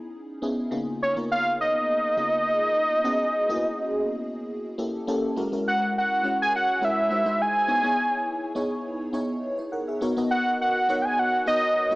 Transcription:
0.00 0.42 B3 medium
0.00 0.42 C#4 medium
0.00 0.42 D#4 medium
0.00 0.43 E4 medium
0.00 0.43 G#4 medium
0.42 0.63 B3 medium
0.42 0.63 C#4 medium
0.42 0.63 D#4 medium
0.42 0.63 E4 medium
0.42 0.63 G#4 medium
0.71 1.02 C#3 medium
0.71 1.02 A#3 medium
0.71 1.02 B3 medium
0.71 1.02 D#4 medium
0.71 1.02 F4 medium
0.71 1.02 G#4 medium
1.02 1.15 C#5 medium
1.16 1.86 C#3 medium
1.16 1.86 A#3 medium
1.16 1.86 B3 medium
1.16 1.86 D#4 medium
1.16 1.86 F4 medium
1.16 1.86 A#4 medium
1.32 1.57 F5 loud
1.61 4.75 D#5 loud
2.16 2.78 C#3 medium
2.16 2.78 A#3 medium
2.16 2.78 B3 medium
2.16 2.78 D#4 medium
2.16 2.78 F4 medium
2.16 2.78 G#4 medium
3.04 3.34 B3 medium
3.04 3.34 C#4 medium
3.04 3.35 E4 medium
3.04 3.35 F#4 medium
3.04 3.35 G#4 loud
3.49 3.55 A#3 medium
3.49 4.29 C#4 medium
3.49 4.30 E4 medium
3.49 4.30 F#4 medium
3.49 4.30 G#4 loud
3.55 4.33 B3 medium
4.78 5.02 A#3 medium
4.78 5.02 C#4 medium
4.78 5.02 E4 medium
4.78 5.02 G4 medium
4.78 5.02 A4 medium
5.07 5.28 A#3 medium
5.07 5.28 C#4 medium
5.07 5.28 E4 medium
5.07 5.29 G4 medium
5.07 5.29 A4 loud
5.36 5.47 G#3 medium
5.36 5.47 C#4 medium
5.36 5.47 E4 medium
5.36 5.48 F#4 medium
5.36 5.48 A#4 medium
5.52 6.02 G#3 medium
5.52 6.02 C#4 medium
5.52 6.02 E4 medium
5.52 6.02 F#4 medium
5.52 6.03 A#4 medium
5.68 5.93 F#5 medium
5.98 6.38 F#5 medium
6.23 6.65 G#3 medium
6.23 6.65 C#4 medium
6.23 6.65 E4 medium
6.23 6.65 F#4 medium
6.23 6.65 C#5 medium
6.42 6.53 G#5 loud
6.56 6.86 F#5 loud
6.81 7.09 G#3 medium
6.81 7.11 C#4 medium
6.81 7.09 E4 medium
6.81 7.10 F#4 medium
6.81 7.11 A#4 medium
6.81 7.43 E5 loud
7.10 7.23 G#3 medium
7.10 7.23 D#4 medium
7.10 7.23 E4 medium
7.10 7.23 F#4 medium
7.10 7.23 C5 medium
7.25 7.56 G#3 medium
7.25 7.56 D#4 medium
7.25 7.56 E4 medium
7.25 7.56 F#4 medium
7.25 7.57 C5 medium
7.42 8.57 G#5 loud
7.68 7.79 B3 medium
7.68 7.79 D#4 medium
7.68 7.79 E4 medium
7.68 7.79 G#4 medium
7.68 7.80 C#5 medium
7.83 8.34 B3 medium
7.83 8.34 D#4 medium
7.83 8.34 E4 medium
7.83 8.34 G#4 medium
7.83 8.34 C#5 medium
8.55 8.97 B3 medium
8.55 8.97 D#4 medium
8.55 8.97 E4 medium
8.55 8.97 G#4 medium
8.55 8.97 C#5 medium
9.13 9.44 B3 medium
9.13 9.43 D#4 medium
9.13 9.43 E4 medium
9.13 9.43 G#4 medium
9.13 9.43 C#5 loud
9.58 9.71 E4 medium
9.58 9.71 C#5 medium
9.72 9.87 A#4 medium
9.72 9.87 F#5 medium
9.88 10.16 G#4 medium
9.88 10.15 E5 medium
10.01 10.12 B3 medium
10.01 10.12 D#4 medium
10.01 10.12 F#4 medium
10.01 10.13 A#4 medium
10.01 10.13 C#5 medium
10.16 10.67 B3 medium
10.16 10.67 D#4 medium
10.16 10.67 F#4 medium
10.16 10.67 A#4 medium
10.16 10.68 D#5 medium
10.31 10.58 F#5 loud
10.61 11.03 F#5 loud
10.89 11.30 B3 medium
10.89 11.30 D#4 medium
10.89 11.30 F#4 medium
10.89 11.30 A#4 medium
10.89 11.31 C#5 medium
11.02 11.07 G5 medium
11.02 11.21 G#5 loud
11.19 11.47 F#5 loud
11.46 11.77 B3 medium
11.46 11.77 D#4 medium
11.46 11.77 F#4 medium
11.46 11.77 A#4 medium
11.46 11.77 C#5 medium
11.46 11.95 D#5 medium
11.91 11.95 B3 medium
11.91 11.95 D#4 medium
11.91 11.95 F#4 medium
11.91 11.95 A#4 medium
11.91 11.95 C#5 medium

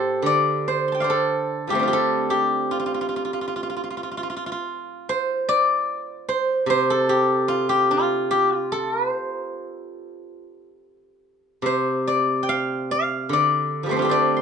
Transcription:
0.00 0.23 A2 soft
0.00 1.70 G4 medium
0.00 1.09 A4 medium
0.00 0.67 C5 soft
0.22 2.71 D3 soft
0.22 1.01 D5 medium
0.68 1.04 C5 medium
0.88 2.19 C6 soft
0.92 2.50 G5 soft
0.92 2.37 A5 soft
1.00 3.02 C5 soft
1.00 2.86 D5 soft
1.00 2.67 F5 soft
1.10 1.93 A4 medium
1.67 1.94 F3 soft
1.67 1.89 G3 soft
1.67 1.87 G4 medium
1.72 5.04 A3 soft
1.72 4.75 C4 soft
1.79 4.59 D4 soft
1.79 2.71 F4 soft
1.88 2.30 G4 soft
1.93 4.12 A4 medium
2.30 4.66 G4 medium
2.71 2.79 F4 medium
2.79 2.86 F4 soft
2.86 2.94 F4 soft
2.94 3.01 F4 soft
3.01 3.08 F4 soft
3.09 3.16 F4 soft
3.16 3.24 F4 soft
3.25 3.33 F4 soft
3.33 3.41 F4 soft
3.41 3.47 F4 soft
3.48 3.55 F4 soft
3.56 3.63 F4 soft
3.63 3.69 F4 soft
3.70 3.76 F4 soft
3.77 3.83 F4 soft
3.84 3.90 F4 soft
3.90 3.97 F4 soft
3.97 4.03 F4 soft
4.03 4.11 F4 soft
4.11 4.17 F4 soft
4.17 4.23 F4 soft
4.23 4.29 F4 soft
4.30 4.36 F4 soft
4.36 4.46 F4 soft
4.46 4.51 F4 soft
4.52 7.04 F4 soft
5.09 6.28 C5 medium
5.49 7.33 D5 medium
6.29 6.70 C5 medium
6.66 9.09 C3 soft
6.66 8.68 C5 medium
6.90 8.72 A4 medium
7.09 7.69 G4 medium
7.48 7.90 F4 medium
7.69 8.30 G4 medium
7.91 8.55 F4 medium
8.31 8.55 G4 medium
8.55 10.66 F4 medium
8.72 9.09 A4 medium
9.09 10.70 C5 medium
11.62 13.31 C3 soft
11.62 13.64 C5 medium
12.07 13.33 D5 medium
12.43 13.98 G5 medium
12.49 12.91 F5 medium
12.91 14.42 F5 medium
13.29 14.42 D3 soft
13.29 14.11 D5 medium
13.83 14.08 F3 soft
13.83 14.05 G3 soft
13.89 14.42 A3 soft
13.89 14.42 C4 soft
13.89 14.09 C5 medium
13.96 14.42 D4 soft
13.96 14.42 F4 soft
14.02 14.42 G4 soft
14.02 14.42 A4 soft
14.09 14.42 C5 soft
14.09 14.42 D5 medium
14.37 14.42 C6 soft

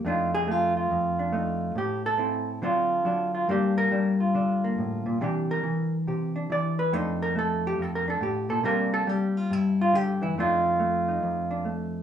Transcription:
0.05 0.89 F2 medium
0.05 0.47 A3 medium
0.05 1.18 D4 medium
0.05 1.32 D#4 medium
0.05 0.34 F4 medium
0.34 0.51 G#4 loud
0.48 1.31 A3 medium
0.48 0.76 F4 medium
0.77 1.77 F4 soft
0.91 1.75 F2 medium
1.19 1.75 D4 soft
1.32 1.74 A3 medium
1.32 1.75 D#4 medium
1.75 2.60 A2 medium
1.75 2.05 G4 medium
2.06 2.48 A4 loud
2.18 2.60 C4 medium
2.18 2.60 E4 medium
2.62 3.46 D3 medium
2.62 3.04 F#3 medium
2.62 3.47 C4 medium
2.62 3.05 D4 medium
2.62 3.33 F4 medium
3.05 3.46 F#3 medium
3.05 3.50 D4 medium
3.35 3.49 F4 medium
3.48 4.77 G2 medium
3.48 3.91 G3 medium
3.48 4.63 A#3 medium
3.48 3.92 D4 medium
3.48 3.77 G4 medium
3.78 4.20 A#4 loud
3.91 6.93 G3 medium
3.91 4.35 D4 medium
4.20 5.21 F4 soft
4.35 5.05 D3 medium
4.35 5.22 D4 soft
4.64 5.20 A#3 medium
4.78 5.06 A2 medium
5.06 5.21 A#2 medium
5.21 5.64 C3 medium
5.21 5.62 E3 medium
5.21 6.35 D4 medium
5.21 5.50 G4 medium
5.51 5.93 A#4 medium
5.63 6.49 E3 medium
6.07 6.50 C3 medium
6.07 6.94 G4 soft
6.36 6.94 D4 soft
6.50 6.91 E3 medium
6.50 6.79 D5 loud
6.79 6.93 B4 medium
6.93 7.77 F2 medium
6.93 7.35 A3 medium
6.93 8.07 D4 medium
6.93 7.65 D#4 medium
6.93 7.21 C5 loud
7.22 7.36 A#4 medium
7.35 8.64 A3 medium
7.35 7.65 A4 medium
7.67 7.80 G4 medium
7.78 8.20 F2 medium
7.78 7.95 A4 medium
7.95 8.08 A#4 medium
8.08 8.64 D4 soft
8.08 8.23 A4 medium
8.21 8.49 A2 medium
8.21 8.50 G4 medium
8.49 8.63 A#2 medium
8.49 8.65 A4 medium
8.64 9.50 C3 medium
8.64 9.06 G3 medium
8.64 10.35 A#3 medium
8.64 9.53 D4 medium
8.64 8.93 A#4 loud
8.94 9.09 A4 medium
9.07 10.21 G3 medium
9.07 9.37 G4 medium
9.37 9.51 F4 medium
9.50 10.35 G2 medium
9.50 9.80 E4 medium
9.81 9.95 F4 loud
9.93 10.21 D3 medium
9.93 10.22 G4 medium
10.22 10.36 E3 medium
10.22 10.37 E4 medium
10.38 11.22 F2 medium
10.38 10.79 A3 medium
10.38 11.50 D4 medium
10.38 11.08 D#4 medium
10.38 11.67 F4 medium
10.79 11.64 A3 medium
11.08 12.03 D#4 soft
11.23 12.03 F2 medium
11.51 12.03 D4 soft
11.65 12.03 A3 medium

